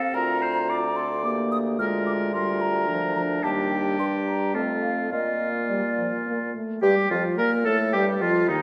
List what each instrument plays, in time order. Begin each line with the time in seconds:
Already playing: french horn C4, oboe A4, flute F5
0.14 bassoon D2, clarinet F4, oboe A#4, flute A#5
0.42 oboe C5
0.69 clarinet F4, oboe D5
0.96 clarinet A4, flute C6
1.24 french horn A#3, clarinet G4, flute D6
1.52 flute D#6
1.79 bassoon D2, french horn G#3, clarinet F4, oboe A#4, flute F6
2.06 flute D6
2.33 french horn G3, clarinet F4, oboe A#4, flute C6
2.61 flute A#5
2.88 french horn F3, clarinet D4
3.16 french horn F3, flute A#5
3.43 bassoon D#2, french horn G3, oboe G4, flute A5
3.71 flute G5
3.99 bassoon G2, flute C6
4.27 flute A#5
4.54 bassoon F2, french horn A3, clarinet C4, oboe F4, flute A5
4.83 flute F5
5.11 bassoon A#2, clarinet A#3, french horn A#3, oboe F4, flute D#5
5.69 french horn G3, flute D5
5.98 french horn F3
6.26 french horn A#3
6.54 french horn A3
6.82 bassoon G2, french horn G3, clarinet G4, oboe G4, flute G4
7.10 bassoon F2, french horn F3, oboe F4, clarinet F4, flute F4
7.38 bassoon A#2, french horn A#3, oboe A#4, clarinet A#4, flute A#4
7.65 bassoon A2, french horn A3, oboe A4, clarinet A4, flute A4
7.93 bassoon G2, french horn G3, oboe G4, flute G4, clarinet G4
8.21 bassoon F2, french horn F3, oboe F4, clarinet F4, flute F4
8.48 bassoon D#2, french horn D#3, oboe D#4, flute D#4, clarinet D#4